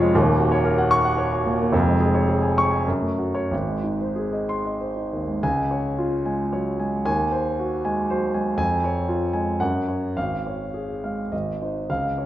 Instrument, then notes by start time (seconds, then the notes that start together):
grand piano
Already playing: F1 F2 F3 G#3 F4 G#4 C#5 F5 C#6
0.02 G#3
0.14 D#1 D#2
0.28 A#3
0.39 F#4
0.52 C#5
0.65 A#4
0.78 F#5
0.91 C#6
1.05 F#5
1.18 C#5
1.32 F#4
1.46 A#2
1.60 A#3
1.73 F1 F2
1.88 G#3
2.00 G#4
2.14 C#5
2.28 G#4
2.42 G#5
2.58 C#6
2.71 G#5
2.87 F#2
3.02 A3
3.18 F#4
3.35 C#5
3.51 G#1
3.68 G#3
3.83 D#4
4.00 C5
4.16 G#4
4.33 D#5
4.49 C6
4.65 D#5
4.81 C5
4.96 D#4
5.12 D#2
5.27 G#3
5.43 C#2 G#5
5.71 C#5
5.98 F4
6.25 G#3 G#5
6.53 F#3 C#5
6.80 G#3 G#5
7.05 D#2 G#5
7.32 C5
7.59 F#4
7.85 G#3 G#5
8.10 F#3 C5
8.34 G#3 G#5
8.57 F2 G#5
8.84 C#5
9.08 F4
9.33 G#3 G#5
9.60 F#2 F#5
9.88 C#5
10.17 G#1 F5
10.47 C#5
10.74 G#4
11.04 G#3 F5
11.32 G#1 D#5
11.62 D#4 C5
11.90 C#2 F5
12.18 C#5